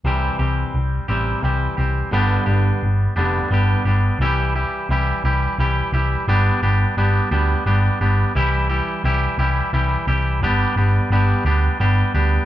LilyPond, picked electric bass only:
\new Staff \with { instrumentName = "Picked electric bass" } { \clef bass \time 6/8 \key c \major \tempo 4. = 58 c,8 c,8 c,8 a,,8 c,8 c,8 | g,,8 g,,8 g,,8 f,,8 g,,8 g,,8 | c,4 c,8 c,8 c,8 c,8 | g,,8 g,,8 g,,8 d,8 g,,8 g,,8 |
c,4 c,8 c,8 c,8 c,8 | g,,8 g,,8 g,,8 d,8 g,,8 d,8 | }